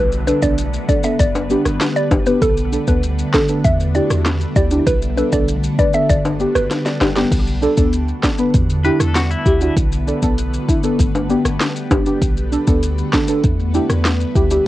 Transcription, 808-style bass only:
Already playing: B1
0.43 B1
1.20 G1
1.65 G1
2.11 F#1
2.42 B1
2.88 D2
3.65 E2
4.10 E2
4.56 D2
4.87 B1
5.33 B1
6.09 G1
6.55 G1
7.01 F#1
7.32 B1
7.78 D2
8.54 E2
9.00 E2
9.46 D2
9.77 B1
10.23 B1
10.99 G1
11.45 G1
11.91 F#1
12.21 B1
12.67 D2
13.44 E2
13.90 E2
14.36 D2

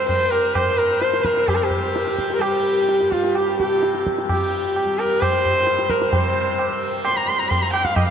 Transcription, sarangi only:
0.08 C5
0.30 A#4
0.54 C5
0.78 A#4
1.02 C5
1.25 A#4
1.48 G4
1.55 A#4
1.63 G4
2.35 A#4
2.42 G4
3.13 F4
3.37 G4
3.59 G4
4.31 G4
4.99 A#4
5.21 C5
5.90 A#4
6.13 C5
7.05 C6
7.16 A#5
7.28 C6
7.38 A#5
7.49 C6
7.61 A#5
7.72 G5
7.84 F5
7.96 D#5
8.07 F5

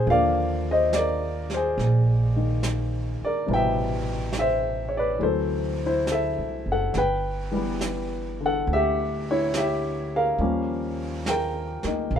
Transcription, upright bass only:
0.07 D#2
1.78 A#1
3.21 muted upright bass stroke
3.48 A1
5.21 D2
6.38 C2
6.66 F#1
6.95 G1
8.67 D2
10.38 D#2
11.84 D2
12.11 A#1

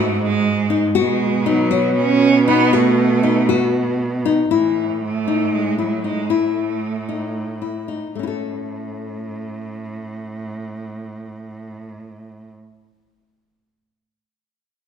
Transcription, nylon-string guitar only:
Already playing: F#4
0.70 D#4
0.95 F#4
1.46 D#4
1.71 F#4
2.48 D#4
2.73 F#4
3.23 D#4
3.49 F#4
4.25 D#4
4.51 E4
5.28 D#4
5.78 E4
6.04 D#4
6.30 E4
7.09 D#4
7.62 E4
7.88 D#4
8.15 A3 C#4
8.23 E4
8.27 A4

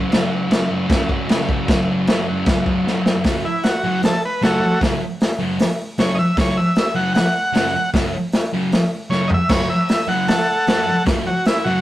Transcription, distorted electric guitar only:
Already playing: F#2 C#3 F#3
0.11 F#2 C#3 F#3
0.49 F#2 C#3 F#3
0.68 F#3
0.72 C#3
0.89 F#2 C#3 F#3
1.09 C#3 F#3
1.28 F#2 C#3
1.32 F#3
1.67 F#2 C#3
1.71 F#3
2.08 F#2 C#3 F#3
2.27 C#3 F#3
2.45 F#2 C#3
2.49 F#3
2.63 F#3
2.67 C#3
2.85 F#2 C#3 F#3
3.24 F#2 C#3 F#3
3.84 F#2 C#3 F#3
4.42 F#2 C#3 F#3
4.82 F#2 C#3 F#3
5.39 F#2 C#3 F#3
5.98 F#2 C#3 F#3
6.37 F#2 C#3 F#3
6.95 F#2 C#3 F#3
7.53 F#2 C#3 F#3
7.94 F#2 C#3 F#3
8.53 F#2 C#3 F#3
9.10 F#2 C#3 F#3
9.49 F#2 C#3 F#3
10.07 F#2 C#3 F#3
10.68 F#2 C#3 F#3
11.05 F#2 C#3 F#3
11.66 F#2 C#3 F#3

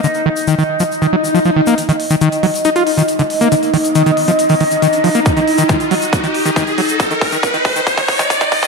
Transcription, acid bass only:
0.04 D3
0.26 D#3
0.48 D#3
0.58 D#3
0.80 F3
1.02 D#3
1.13 F#3
1.34 F3
1.45 F3
1.56 D#3
1.67 A#3
1.89 D#3
2.11 D#3
2.21 D#3
2.43 F#3
2.65 D#4
2.76 F4
2.98 D#3
3.19 D3
3.41 A#3
3.52 D3
3.74 D#3
3.95 D#3
4.06 D#3
4.28 F3
4.50 D#3
4.61 D#3
4.82 D#3
5.04 F3
5.15 A#3
5.37 D#3
5.58 D#3
5.69 D#3
5.91 F#3
6.24 D#3
6.45 D#3
6.56 D#3
6.78 F#3
7.11 D#3
7.32 D#3
7.54 D#3
7.76 D#3
7.98 D#3
8.19 D#3
8.41 D#3
8.63 D#3

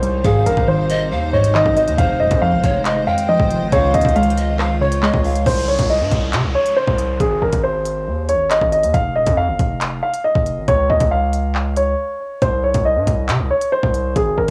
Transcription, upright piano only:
Already playing: C5
0.24 G#4
0.46 A#4
0.68 C5
1.33 C#5
1.55 D#5
1.77 D#5
1.98 F5
2.20 D#5
2.42 F5
3.07 F5
3.29 D#5
3.72 C#5
3.94 D#5
4.16 F5
4.81 C#5
5.46 C5
5.68 C#5
5.90 D#5
6.55 C#5
6.77 C5
7.20 G#4
7.42 A#4
7.64 C5
8.29 C#5
8.51 D#5
8.72 D#5
8.94 F5
9.16 D#5
9.37 F5
10.03 F5
10.24 D#5
10.68 C#5
10.90 D#5
11.11 F5
11.77 C#5
12.42 C5
12.64 C#5
12.85 D#5
13.50 C#5
13.72 C5
14.16 G#4
14.37 A#4

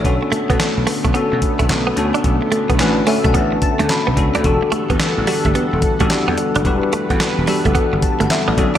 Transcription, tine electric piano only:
Already playing: C#5
0.05 C#4 D4 F#4 A4
1.14 C#4 D4 F#4 A4
1.97 C#4 D4 F#4 A4
2.80 C#4 D4 F#4 B4
3.07 C#4 D4 F#4 A4 E5
3.25 F#5
3.35 A5
3.62 A5
3.90 B5
4.17 C#4 D4 F#4 A4
4.44 D4 F#4 G4 A4
5.27 D4 F#4 G4 A4
6.00 D4 F#4 G4 A4
6.65 D4 F#4 G4 B4
7.47 D4 F#4 G4 A4
8.03 A5
8.21 F#5
8.30 E5
8.48 D5
8.57 C#4 D4 F#4 A4

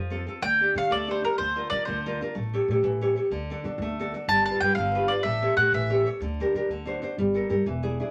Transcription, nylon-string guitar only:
Already playing: F3
0.10 C4 F4 A4
0.26 C4 F4 A4
0.42 D3
0.60 D4 G4 A4
0.75 D4 G4 A4
0.91 A3
1.07 D4 G4 A4
1.24 D4 G4 A4
1.40 D3
1.55 D4 F4 A#4
1.71 D4 F4 A#4
1.87 D3
2.06 D4 F4 A#4
2.21 D4 F4 A#4
2.35 A3
2.54 G4 A4 C#5
2.71 G4 A4 C#5
2.84 E3
3.01 G4 A4 C#5
3.16 G4 A4 C#5
3.31 D3
3.50 D4 F#4 A4
3.65 D4 F#4 A4
3.82 A3
3.99 D4 F#4 A4
4.14 D4 F#4 A4
4.30 G3
4.49 F4 G4 B4
4.63 F4 G4 B4
4.78 D3
4.94 F4 G4 B4
5.09 F4 G4 B4
5.25 A3
5.42 G4 A4 C#5
5.58 G4 A4 C#5
5.74 E3
5.90 G4 A4 C#5
6.06 G4 A4 C#5
6.22 D3
6.40 D4 G4 A#4
6.55 D4 G4 A#4
6.71 D3
6.85 D4 F#4 C5
7.02 D4 F#4 C5
7.18 G3
7.34 G4 A4 A#4
7.50 G4 A4 A#4
7.66 E3
7.83 D4 E4 G#4
8.00 D4 E4 G#4

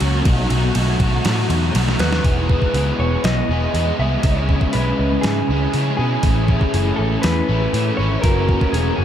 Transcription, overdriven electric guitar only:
0.02 F#3 A#3 C#4 F#4
0.26 B2 F#3 A3 D#4 F#4
0.51 A3 D#4 F#4
0.77 F#3 A3 D#4 F#4
1.02 A3 D#4 F#4
1.25 B2 F#3 A3 D#4 F#4
1.51 A3 D#4 F#4
1.75 F#3 A3 D#4 F#4
2.01 A3 D#4 F#4
2.24 E3 G#3 B3 E4 G#4
2.50 B3 E4 G#4
2.74 G#3 B3 E4 G#4
3.50 B3 E4 G#4
3.75 G#3 B3 E4 G#4
3.99 B3 E4 G#4
4.24 C#3 G#3 C#4 E4
4.49 G#3 C#4 E4
4.75 C#3 G#3 C#4 E4
5.50 G#3 C#4 E4
5.74 C#3 G#3 C#4 E4
5.98 G#3 C#4 E4
6.24 A2 E3 A3 C#4 E4
6.49 A3 C#4 E4
6.74 E3 A3 C#4 E4
7.49 A3 C#4 E4
7.73 E3 A3 C#4 E4
7.99 A3 C#4 E4
8.24 F#3 A#3 C#4 F#4
8.49 A#3 C#4 F#4
8.74 F#3 A#3 C#4 F#4

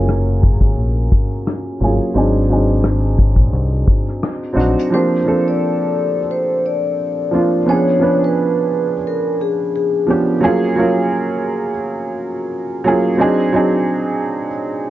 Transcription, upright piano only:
Already playing: F#3 A#3 C#4 F4 G#4 A#4
1.80 F#3 A#3 C#4 F4 G#4
2.14 F#3 C4 D4 D#4 G#4
2.49 F#3 C4 D4 D#4 G#4
4.53 F#3 C4 D4 D#4 F#4
4.90 F3 A#3 C4 D4 G4
5.25 F3 A#3 C4 D4 A4
7.31 F3 A#3 C4 D4 F4
7.66 F3 B3 C#4 D4
7.70 G#4
7.99 F3 B3 C#4 D4 B4
10.07 F3 B3 C#4 D4 G4
10.40 F#3 A#3 C#4 F4 G#4
10.76 F#3 A#3 C#4 F4 A#4
12.84 F#3 A#3 C#4 F4 G#4
13.17 F#3 C4 D4 D#4
13.21 G#4
13.52 F#3 C4 D4 D#4 G#4

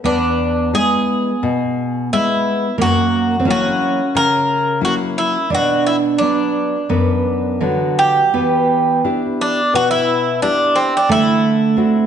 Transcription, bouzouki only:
0.05 D4
0.75 G#4
2.13 E4
2.82 F#4
3.50 F#4
4.17 A#4
4.85 F#4
5.18 E4
5.55 F#4
5.87 E4
6.18 D4
7.99 G4
9.41 D4
9.75 F#4
9.91 E4
10.42 D4
10.76 C4
10.97 D4
11.12 E4

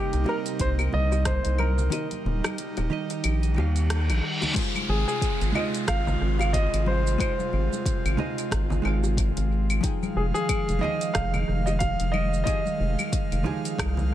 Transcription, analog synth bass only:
0.13 C2
0.60 C2
0.93 C2
1.45 C2
2.25 D#1
2.78 D#1
3.24 A#1
3.57 D#2
4.09 A#1
4.89 G#1
5.41 G#1
5.88 G#1
6.21 G#1
6.73 G#1
7.53 G#1
8.05 G#1
8.52 G#1
8.85 G#1
9.37 G#1
10.16 F1
10.69 F1
11.15 F1
11.48 F1
12.00 F1
12.80 F1
13.32 F1
13.79 C2

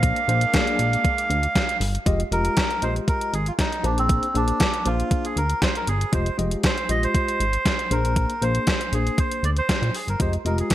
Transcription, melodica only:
Already playing: F5
2.32 A#4
2.83 C5
3.09 A#4
3.34 G#4
3.48 F4
3.60 D#4
3.85 D4
3.99 C4
4.36 D4
4.87 F4
5.25 G#4
5.37 A#4
5.63 C5
5.76 A#4
5.88 G#4
6.14 C5
6.65 C5
6.91 D#5
7.04 C5
7.92 A#4
8.43 C5
8.94 G#4
9.19 C5
9.45 D5
9.58 C5
9.95 G#4
10.09 A#4
10.21 C5
10.46 A#4
10.60 G#4

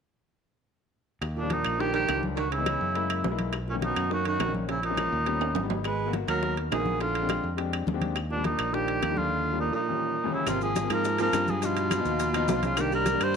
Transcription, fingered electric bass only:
1.21 D#2
1.65 A#1
2.09 C#2
2.81 F#2
3.24 B1
3.96 F#2
4.40 A#1
5.12 D#2
5.55 G#1
6.28 D#2
6.71 A#1
7.44 F2
7.87 D#2
8.59 A#1
9.02 D#2
10.47 G#1
10.90 G#2
11.33 G2
12.05 D#2
12.48 C2
13.20 G2

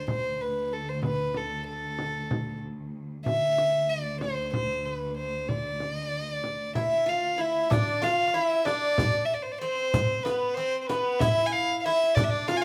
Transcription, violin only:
0.10 C5
0.41 B4
0.73 A4
0.89 C5
1.05 B4
1.37 A4
1.68 A4
3.26 E5
3.90 D5
4.22 C5
4.54 C5
4.85 B4
5.18 C5
5.49 D5
5.94 D#5
6.06 D5
6.20 D#5
6.32 D5
6.77 E5
7.09 F5
7.41 E5
7.73 D5
8.03 F5
8.35 E5
8.66 D5
9.25 E5
9.34 D5
9.42 C5
9.52 D5
9.59 C5
10.23 B4
10.54 C5
10.82 C5
10.87 B4
11.19 E5
11.46 G#5
11.52 F5
11.80 F5
11.85 E5
12.15 D5
12.24 E5
12.30 D5
12.48 F5
12.57 G#5
12.61 F5

